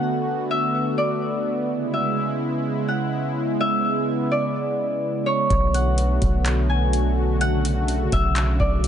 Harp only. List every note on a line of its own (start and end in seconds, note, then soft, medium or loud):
0.00 1.40 F#5 loud
0.00 0.58 G#5 medium
0.51 1.93 E5 medium
0.98 2.82 D5 medium
1.94 3.60 E5 medium
2.88 4.49 F#5 medium
3.60 5.33 E5 loud
4.31 5.32 D5 medium
5.26 7.17 C#5 medium
5.74 7.35 F#5 medium
6.69 8.19 G#5 medium
7.41 8.88 F#5 loud
8.13 8.88 E5 medium
8.60 8.88 D5 medium